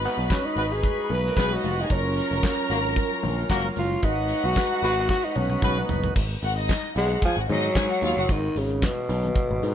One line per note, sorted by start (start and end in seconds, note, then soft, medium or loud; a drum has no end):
0.00 1.86 G#3 medium
0.00 1.86 D#4 medium
0.00 1.86 F#4 medium
0.00 1.19 B4 medium
0.00 1.86 B4 medium
0.00 1.19 B5 medium
0.00 tambourine medium
0.04 0.33 B3 medium
0.04 open hi-hat medium
0.18 0.26 B1 medium
0.30 0.39 B3 medium
0.30 0.47 C#4 loud
0.30 0.39 F#4 medium
0.30 0.39 G#4 medium
0.30 0.39 B4 medium
0.30 kick loud
0.30 snare loud
0.30 clap medium
0.30 closed hi-hat medium
0.30 tambourine loud
0.30 high conga medium
0.46 0.74 D#4 medium
0.56 0.85 G#1 medium
0.56 0.66 B3 medium
0.56 0.66 F#4 medium
0.56 0.66 G#4 medium
0.56 0.66 B4 medium
0.56 open hi-hat medium
0.56 tambourine medium
0.73 1.13 G#4 loud
0.84 kick loud
0.84 closed hi-hat medium
0.84 muted conga medium
1.10 1.29 B1 medium
1.10 1.40 B4 loud
1.10 open hi-hat medium
1.10 muted conga medium
1.26 1.37 A#3 medium
1.26 1.37 A#4 medium
1.26 snare soft
1.36 1.55 B1 medium
1.36 1.45 B3 medium
1.36 1.54 B3 loud
1.36 1.54 F#4 loud
1.36 1.54 G#4 loud
1.36 1.54 G#4 medium
1.36 1.45 B4 medium
1.36 1.54 B4 loud
1.36 kick loud
1.36 snare loud
1.36 clap medium
1.36 closed hi-hat medium
1.36 tambourine medium
1.36 high conga medium
1.45 1.55 C#4 medium
1.45 1.54 C#5 medium
1.53 1.63 D#4 medium
1.53 1.82 F#4 medium
1.53 1.64 D#5 medium
1.63 1.83 F1 medium
1.63 1.72 F4 medium
1.63 1.72 F5 medium
1.63 open hi-hat medium
1.63 tambourine soft
1.63 high conga medium
1.72 1.81 F#4 medium
1.72 1.81 F#5 loud
1.81 1.94 D#4 loud
1.81 1.90 G#4 medium
1.81 1.91 G#5 medium
1.90 2.19 F#1 loud
1.90 4.01 F#3 medium
1.90 4.01 C#4 medium
1.90 3.25 C#4 medium
1.90 4.01 F4 medium
1.90 4.01 A#4 medium
1.90 3.73 A#4 loud
1.90 3.73 A#5 loud
1.90 kick loud
1.90 closed hi-hat medium
1.90 tambourine medium
2.17 open hi-hat medium
2.17 tambourine medium
2.31 2.40 F1 medium
2.43 2.53 A#3 medium
2.43 2.53 F#4 medium
2.43 2.53 A#4 medium
2.43 kick loud
2.43 snare loud
2.43 clap loud
2.43 closed hi-hat medium
2.43 tambourine medium
2.43 high conga medium
2.70 2.99 G#1 medium
2.70 2.79 A#3 medium
2.70 2.79 F#4 medium
2.70 2.79 A#4 medium
2.70 open hi-hat medium
2.70 tambourine medium
2.96 kick loud
2.96 closed hi-hat medium
2.96 tambourine soft
2.96 muted conga medium
3.23 3.42 A#1 loud
3.23 open hi-hat medium
3.23 muted conga medium
3.23 low conga medium
3.50 3.69 F#1 medium
3.50 3.67 A#3 loud
3.50 3.67 F#4 loud
3.50 3.67 A#4 loud
3.50 kick loud
3.50 snare loud
3.50 clap medium
3.50 closed hi-hat medium
3.50 tambourine loud
3.50 high conga medium
3.76 3.96 F#1 medium
3.76 4.06 F4 medium
3.76 open hi-hat medium
3.76 tambourine medium
3.76 high conga medium
4.03 4.32 G#1 loud
4.03 6.14 G#3 medium
4.03 6.14 D#4 medium
4.03 4.47 D#4 loud
4.03 6.14 F#4 medium
4.03 5.86 F#4 medium
4.03 6.14 B4 medium
4.03 5.86 F#5 loud
4.03 kick loud
4.03 closed hi-hat medium
4.03 tambourine medium
4.29 open hi-hat medium
4.29 tambourine medium
4.44 4.53 B1 medium
4.44 4.83 F#4 loud
4.55 4.66 B3 medium
4.55 4.65 F#4 medium
4.55 4.66 G#4 medium
4.55 4.66 B4 medium
4.55 kick loud
4.55 snare loud
4.55 clap medium
4.55 closed hi-hat medium
4.55 tambourine loud
4.55 high conga medium
4.82 5.12 G#1 medium
4.82 4.92 B3 loud
4.82 4.92 F#4 medium
4.82 5.08 F#4 loud
4.82 4.92 G#4 medium
4.82 4.92 B4 loud
4.82 open hi-hat medium
4.82 tambourine medium
4.82 muted conga soft
5.09 5.26 F#4 loud
5.09 kick loud
5.09 snare medium
5.09 tambourine soft
5.09 muted conga medium
5.25 5.38 D#4 medium
5.36 5.55 B1 medium
5.36 5.80 C#4 medium
5.36 high tom medium
5.36 muted conga medium
5.50 high tom medium
5.62 5.81 B1 loud
5.62 5.80 B3 loud
5.62 5.80 F#4 loud
5.62 5.80 G#4 loud
5.62 5.80 B4 loud
5.62 kick loud
5.62 mid tom medium
5.62 tambourine loud
5.62 high conga medium
5.78 6.17 B3 medium
5.89 6.08 F#1 medium
5.89 floor tom loud
5.89 tambourine soft
5.89 high conga medium
6.04 floor tom loud
6.16 6.35 G#1 loud
6.16 kick loud
6.16 crash loud
6.16 tambourine medium
6.43 6.72 G#1 loud
6.43 6.55 F#4 medium
6.43 6.55 F#5 loud
6.43 open hi-hat medium
6.43 tambourine medium
6.56 6.94 D#4 medium
6.56 6.94 D#5 loud
6.56 closed hi-hat medium
6.69 kick loud
6.69 snare loud
6.69 clap medium
6.69 closed hi-hat medium
6.69 tambourine loud
6.69 high conga medium
6.96 7.15 B1 medium
6.96 7.22 G#3 loud
6.96 7.18 F#4 medium
6.96 7.18 F#5 medium
6.96 open hi-hat medium
6.96 tambourine medium
7.10 closed hi-hat soft
7.22 7.36 F3 loud
7.22 7.35 G#4 medium
7.22 7.35 G#5 loud
7.22 kick loud
7.22 closed hi-hat medium
7.22 tambourine soft
7.22 muted conga medium
7.37 7.46 G#1 medium
7.37 7.47 F#4 medium
7.37 7.47 F#5 medium
7.49 7.68 G#2 loud
7.49 8.33 F#3 loud
7.49 7.71 D#4 loud
7.49 7.71 D#5 loud
7.49 open hi-hat medium
7.49 muted conga medium
7.49 low conga loud
7.63 closed hi-hat medium
7.75 7.86 G#2 loud
7.75 7.88 G#4 medium
7.75 7.88 G#5 loud
7.75 kick loud
7.75 snare loud
7.75 clap medium
7.75 closed hi-hat medium
7.75 tambourine medium
7.75 high conga medium
7.90 8.00 F#4 medium
7.90 8.00 F#5 loud
8.02 8.12 D#2 medium
8.02 8.14 F4 loud
8.02 8.14 F5 loud
8.02 open hi-hat medium
8.02 tambourine medium
8.02 high conga medium
8.17 8.26 F#1 loud
8.17 8.28 F#4 medium
8.17 8.28 F#5 medium
8.17 closed hi-hat medium
8.17 high conga medium
8.29 8.48 G#1 loud
8.29 8.59 D#3 loud
8.29 kick loud
8.29 closed hi-hat medium
8.29 tambourine medium
8.56 8.85 G#1 loud
8.56 8.86 C#3 medium
8.56 open hi-hat medium
8.56 tambourine medium
8.70 closed hi-hat medium
8.82 9.74 B2 loud
8.82 kick loud
8.82 snare loud
8.82 clap medium
8.82 closed hi-hat medium
8.82 tambourine loud
8.82 high conga medium
9.09 9.28 B1 loud
9.09 open hi-hat medium
9.09 tambourine medium
9.09 muted conga soft
9.23 closed hi-hat soft
9.23 low conga medium
9.36 kick loud
9.36 closed hi-hat medium
9.36 muted conga medium
9.51 9.59 G#1 loud
9.63 9.74 G#2 loud
9.63 open hi-hat medium
9.63 tambourine soft
9.63 muted conga medium